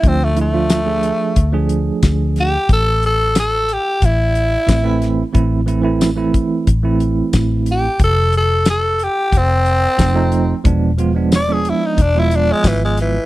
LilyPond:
<<
  \new Staff \with { instrumentName = "Tenor saxophone" } { \time 4/4 \key a \minor \tempo 4 = 90 c'16 a16 a2 r4 g'8 | a'8 a'8 a'8 g'8 e'2 | r2. r8 g'8 | a'8 a'8 a'8 g'8 c'2 |
r4 d''16 gis'16 e'16 dis'16 d'16 e'16 d'16 gis16 e16 gis16 e8 | }
  \new Staff \with { instrumentName = "Tine electric piano" } { \time 4/4 \key a \minor <f a d' f'>8 <f a d' e'>16 <f a d' f'>8 <f a d' gis'>8. r16 <f a d' gis'>4. r16 | r2. <e a c' e'>16 <e a c' e'>8 r16 | <e a c' e'>8 <e a c' e'>16 <e a c' e'>8 <e a c' e'>8. r16 <e a c' e'>4. r16 | r2. <f a c' ees'>16 <f a c' ees'>8 r16 |
<f gis b d'>8 <f gis b f'>16 <f gis b d'>8 <f gis b d'>8. r16 <f gis b f'>4. r16 | }
  \new Staff \with { instrumentName = "Fingered electric bass" } { \clef bass \time 4/4 \key a \minor d,2 d,4 d,4 | a,,2 a,,4 a,,4 | a,,2 a,,4 a,,4 | f,,2 f,,4 f,,4 |
e,,2 e,,4 gis,,4 | }
  \new DrumStaff \with { instrumentName = "Drums" } \drummode { \time 4/4 <hh bd>8 hh8 <hh sn tamb>8 hh8 <hh bd>8 hh8 <hh bd sn tamb>8 <hh sn>8 | <hh bd>8 hh8 <hh sn tamb>8 hh8 <hh bd>8 hh8 <hh bd sn tamb>8 <hh sn>8 | <hh bd>8 hh8 <hh sn tamb>8 <hh bd>8 <hh bd>8 hh8 <hh bd sn tamb>8 hh8 | <hh bd>8 hh8 <hh sn tamb>8 hh8 <hh bd>8 hh8 <hh bd sn tamb>8 hh8 |
<hh bd>8 hh8 <hh sn tamb>8 hh8 <hh bd>8 hh8 <hh bd sn tamb>8 <hh sn>8 | }
>>